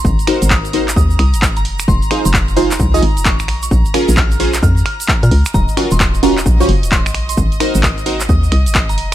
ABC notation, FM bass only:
X:1
M:4/4
L:1/16
Q:"Swing 16ths" 1/4=131
K:Abmix
V:1 name="FM bass" clef=bass
A,,, z2 A,,,4- A,,, E,,2 C,, A,,,2 F,,,3 | F,,, z2 F,,,4- F,,, C,,2 A,,, F,,,2 B,,,3 | B,,, z2 B,,,4- B,,, F,,2 z3 B,, D,, z | E,,, z2 E,,,4- E,,, B,,,2 G,,, E,,,2 B,,,3 |
A,,, z2 A,,,4- A,,, E,,2 C,, A,,,2 F,,,3 |]